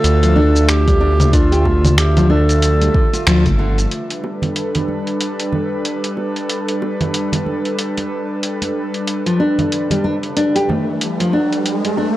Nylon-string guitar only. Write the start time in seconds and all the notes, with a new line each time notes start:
0.23 F3
0.36 D4
0.88 G3
1.01 D4
1.33 D4
1.52 G4
1.65 A3
2.16 F3
2.30 D4
2.81 G3
2.94 D3
3.13 F4
3.27 F3
3.46 A3
3.59 D3
9.26 F3
9.40 D4
9.91 G3
10.04 D4
10.37 D4
10.55 G4
10.69 A3
11.20 F3
11.33 D4
11.85 G3
11.98 D4